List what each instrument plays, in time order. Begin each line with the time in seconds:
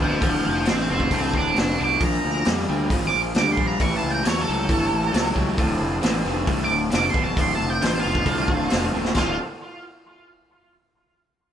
Already playing: overdriven electric guitar D2, tonewheel organ C4 D4 F4 A4
0.00 fingered electric bass D1, overdriven electric guitar B2, lead electric guitar F5 A5, kick
0.21 fingered electric bass D1, overdriven electric guitar D2 A2, lead electric guitar F5 A5, kick, open hi-hat
0.45 fingered electric bass F1, lead electric guitar F5 A5
0.65 fingered electric bass A1, overdriven electric guitar D2 B2, lead electric guitar G5, snare, open hi-hat
0.70 lead electric guitar C6
0.79 snare
0.89 fingered electric bass F1, overdriven electric guitar D2 B2, lead electric guitar G5 C6
1.00 kick
1.11 fingered electric bass C2, overdriven electric guitar D2 A2, lead electric guitar G5 C6, kick, open hi-hat
1.34 fingered electric bass D1, lead electric guitar A5 D6, kick
1.55 fingered electric bass F1, overdriven electric guitar D2 B2, lead electric guitar A5, snare, open hi-hat
1.59 lead electric guitar D6
1.77 fingered electric bass C2, overdriven electric guitar D2 B2, lead electric guitar A5
1.82 lead electric guitar D6
1.99 fingered electric bass A#1, overdriven electric guitar A#2 F3, tonewheel organ A#3 D4 F4 G#4, kick, open hi-hat
2.04 lead electric guitar A#5
2.25 fingered electric bass D2
2.45 fingered electric bass F2, overdriven electric guitar A#2 G3, snare, open hi-hat
2.59 snare
2.69 fingered electric bass D2, overdriven electric guitar A#2 G3
2.90 fingered electric bass G#1, overdriven electric guitar A#2 F3, kick, open hi-hat
3.07 lead electric guitar D6
3.15 fingered electric bass A#1
3.34 fingered electric bass D2, overdriven electric guitar A#2 G3, lead electric guitar D6, snare, open hi-hat
3.52 lead electric guitar C6
3.57 fingered electric bass A#1, overdriven electric guitar A#2 G3, kick
3.67 lead electric guitar A#5
3.80 fingered electric bass A1, overdriven electric guitar A2 E3, tonewheel organ A#3 C#4 G4 A4, lead electric guitar C#6, kick, open hi-hat
3.97 lead electric guitar A5
4.04 fingered electric bass C#2
4.11 lead electric guitar G5
4.23 fingered electric bass E2, overdriven electric guitar A2 F#3, lead electric guitar C#5, snare, open hi-hat
4.42 lead electric guitar A4
4.48 fingered electric bass C#2, overdriven electric guitar A2 F#3
4.68 fingered electric bass G1, overdriven electric guitar A2 E3, kick, open hi-hat
4.93 fingered electric bass A1
5.12 fingered electric bass C#2, overdriven electric guitar A2 F#3, snare, open hi-hat
5.34 fingered electric bass C#2, overdriven electric guitar A2 F#3, kick
5.57 fingered electric bass D1, overdriven electric guitar D2 A2, tonewheel organ C4 D4 F4 A4, kick, open hi-hat
5.81 fingered electric bass F1
6.02 fingered electric bass A1, overdriven electric guitar D2 B2, snare, open hi-hat
6.25 fingered electric bass F1, overdriven electric guitar D2 B2
6.45 fingered electric bass C2, overdriven electric guitar D2 A2, kick, open hi-hat
6.64 lead electric guitar D6
6.71 fingered electric bass D1
6.91 fingered electric bass F1, overdriven electric guitar D2 B2, snare, open hi-hat
6.95 lead electric guitar D6
7.10 overdriven electric guitar D2, lead electric guitar C6
7.14 fingered electric bass D1, overdriven electric guitar B2, kick
7.24 lead electric guitar A5
7.37 fingered electric bass D1, overdriven electric guitar D2 A2, lead electric guitar C6, kick, open hi-hat
7.55 lead electric guitar A5
7.60 fingered electric bass F1
7.70 lead electric guitar G5
7.81 fingered electric bass A1, overdriven electric guitar D2 B2, snare, open hi-hat
7.86 lead electric guitar C5
8.00 lead electric guitar F4
8.04 fingered electric bass F1, overdriven electric guitar D2 B2
8.15 kick
8.25 fingered electric bass C2, overdriven electric guitar D2 A2, kick, open hi-hat
8.48 fingered electric bass D1, kick
8.70 fingered electric bass F1, overdriven electric guitar D2 B2, snare, open hi-hat
8.92 fingered electric bass D1, overdriven electric guitar D2 B2, high tom
9.05 snare
9.15 fingered electric bass D1, overdriven electric guitar D2 A2 D3, tonewheel organ C4 D4 F4 A4, lead electric guitar F4, kick, snare, splash